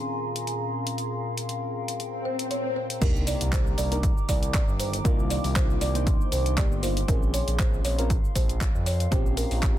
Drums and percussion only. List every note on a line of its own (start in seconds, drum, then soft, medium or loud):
0.36 closed hi-hat medium
0.47 closed hi-hat soft
0.87 closed hi-hat medium
0.98 closed hi-hat soft
1.38 closed hi-hat medium
1.49 closed hi-hat soft
1.88 closed hi-hat medium
2.00 closed hi-hat soft
2.39 closed hi-hat medium
2.51 closed hi-hat soft
2.90 closed hi-hat medium
3.02 kick loud
3.02 closed hi-hat medium
3.02 crash loud
3.02 cabasa soft
3.16 cabasa soft
3.27 open hi-hat loud
3.27 cabasa medium
3.41 closed hi-hat medium
3.41 cabasa soft
3.52 kick loud
3.52 clap loud
3.52 closed hi-hat medium
3.52 cabasa soft
3.67 cabasa soft
3.78 open hi-hat loud
3.78 cabasa medium
3.92 closed hi-hat medium
3.92 cabasa soft
4.03 kick loud
4.03 closed hi-hat medium
4.03 cabasa soft
4.18 cabasa soft
4.29 kick medium
4.29 open hi-hat loud
4.29 cabasa medium
4.43 closed hi-hat medium
4.43 cabasa soft
4.54 kick loud
4.54 clap loud
4.54 closed hi-hat medium
4.54 cabasa soft
4.69 cabasa soft
4.80 open hi-hat loud
4.80 cabasa medium
4.93 closed hi-hat medium
4.93 cabasa soft
5.05 kick loud
5.05 closed hi-hat medium
5.05 cabasa soft
5.19 cabasa soft
5.30 open hi-hat loud
5.30 cabasa medium
5.44 open hi-hat medium
5.44 cabasa soft
5.56 kick loud
5.56 clap loud
5.56 closed hi-hat medium
5.56 cabasa soft
5.70 cabasa soft
5.81 open hi-hat loud
5.81 cabasa medium
5.95 closed hi-hat medium
5.95 cabasa soft
6.07 kick loud
6.07 closed hi-hat medium
6.07 cabasa soft
6.21 cabasa soft
6.32 open hi-hat loud
6.32 cabasa medium
6.46 closed hi-hat medium
6.46 cabasa soft
6.58 kick loud
6.58 clap loud
6.58 closed hi-hat medium
6.58 cabasa soft
6.72 cabasa soft
6.83 open hi-hat loud
6.83 cabasa medium
6.97 closed hi-hat medium
6.97 cabasa soft
7.08 kick loud
7.08 closed hi-hat medium
7.08 cabasa soft
7.23 cabasa soft
7.34 open hi-hat loud
7.34 cabasa medium
7.48 closed hi-hat medium
7.48 cabasa soft
7.59 kick loud
7.59 clap loud
7.59 closed hi-hat medium
7.59 cabasa soft
7.74 cabasa soft
7.85 open hi-hat loud
7.85 cabasa medium
7.99 closed hi-hat medium
7.99 cabasa soft
8.10 kick loud
8.10 closed hi-hat medium
8.10 cabasa soft
8.24 cabasa soft
8.35 kick medium
8.35 open hi-hat loud
8.35 cabasa medium
8.49 closed hi-hat medium
8.49 cabasa soft
8.61 kick loud
8.61 clap loud
8.61 closed hi-hat medium
8.61 cabasa soft
8.75 cabasa soft
8.86 open hi-hat loud
8.86 cabasa medium
9.00 closed hi-hat medium
9.00 cabasa soft
9.12 kick loud
9.12 closed hi-hat medium
9.12 cabasa soft
9.26 cabasa soft
9.37 open hi-hat loud
9.37 cabasa medium
9.51 open hi-hat medium
9.51 cabasa soft
9.63 kick loud
9.63 clap loud
9.63 closed hi-hat medium
9.63 cabasa soft